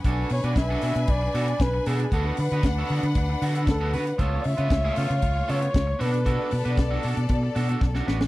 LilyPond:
<<
  \new Staff \with { instrumentName = "Flugelhorn" } { \time 4/4 \key b \dorian \tempo 4 = 116 r8 cis''16 d''16 e''4 d''4 b'8 gis'8 | a'8 b'4 r4. a'8 b'8 | cis''8 e''4 eis''4 cis''4 b'8~ | b'4. r2 r8 | }
  \new Staff \with { instrumentName = "String section" } { \time 4/4 \key b \dorian <d' b' gis''>1 | <d' b' fis''>1 | <a eis' cis''>2.~ <a eis' cis''>8 <b a' d''>8~ | <b a' d''>1 | }
  \new Staff \with { instrumentName = "Clean electric guitar" } { \time 4/4 \key b \dorian <d' fis' a'>8 r16 <d' fis' b'>16 r16 <d' fis' a'>16 <d' fis' a'>16 r8. <d' fis' a'>16 r8. <d' fis' a'>16 r16 | <b fis' a'>8 r16 <b fis' b'>16 r16 <b fis' a'>16 <b fis' a'>16 r8. <b fis' a'>16 <b fis' a'>16 r16 <b fis' a'>16 <b fis' b'>16 r16 | <b eis' a'>8 r16 <b eis' b'>16 r16 <b eis' a'>16 <b eis' a'>16 r8. <b eis' a'>16 r8. <d' fis' a'>16 r16 | <d' fis' a'>8 r16 <d' fis' b'>16 r16 <d' fis' a'>16 <d' fis' a'>16 r8. <d' fis' a'>16 <d' fis' a'>16 r16 <d' fis' a'>16 <d' fis' b'>16 r16 | }
  \new Staff \with { instrumentName = "Fingered electric bass" } { \clef bass \time 4/4 \key b \dorian b,,8 b,16 b,16 b,,8 b,16 b,16 b,,8 b,8 b,,8 b,8 | d,8 d16 d16 d,8 d16 d16 d,8 d8 d,8 d8 | cis,8 cis16 cis16 cis,8 cis16 cis16 cis,8 cis8 cis,8 b,8~ | b,8 b,16 b,16 b,,8 b,16 b,16 b,8 b,8 b,,8 a,,8 | }
  \new DrumStaff \with { instrumentName = "Drums" } \drummode { \time 4/4 <hh bd>8 hho16 hh16 <hh bd sn>8 hho16 hh16 <hh bd>8 hho16 hh16 <hh bd sn>8 hho16 hh16 | <hh bd>8 hho16 hh16 <hh bd sn>8 hho16 hh16 <hh bd>8 hho16 hh16 <hh bd sn>8 hho16 hh16 | <hh bd>8 hho16 hh16 <hh bd sn>8 hho16 hh16 <hh bd>8 hho16 hh16 <hh bd sn>8 hho16 hh16 | <hh bd>8 hho16 hh16 <hh bd sn>8 hho16 hh16 <hh bd>8 hho16 hh16 <bd sn>16 sn16 sn16 sn16 | }
>>